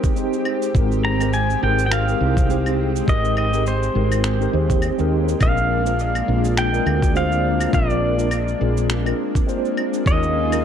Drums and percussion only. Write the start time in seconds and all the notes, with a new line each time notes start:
0.04 kick, cabasa
0.16 cabasa
0.33 cabasa
0.45 claves
0.62 cabasa
0.75 kick, cabasa
0.92 cabasa
1.21 cabasa, claves
1.33 cabasa
1.50 cabasa
1.79 cabasa
1.92 finger snap, cabasa, claves
2.08 cabasa
2.37 kick, cabasa
2.50 cabasa
2.66 cabasa, claves
2.96 cabasa
3.08 kick, cabasa
3.25 cabasa
3.37 claves
3.53 cabasa
3.66 cabasa
3.83 cabasa
4.12 cabasa, claves
4.24 finger snap, cabasa
4.41 cabasa
4.70 kick, cabasa
4.82 cabasa, claves
4.99 cabasa
5.28 cabasa
5.40 kick, cabasa, claves
5.57 cabasa
5.86 cabasa
5.99 cabasa
6.15 cabasa, claves
6.44 cabasa
6.57 finger snap, cabasa
6.74 cabasa
6.87 claves
7.02 kick, cabasa
7.16 cabasa
7.32 cabasa
7.61 cabasa, claves
7.73 kick, cabasa
7.90 cabasa
8.19 cabasa
8.31 cabasa, claves
8.48 cabasa
8.77 cabasa
8.90 finger snap, cabasa
9.06 cabasa, claves
9.35 kick, cabasa
9.49 cabasa
9.65 cabasa
9.77 claves
9.93 cabasa
10.06 kick, cabasa
10.23 cabasa
10.52 cabasa, claves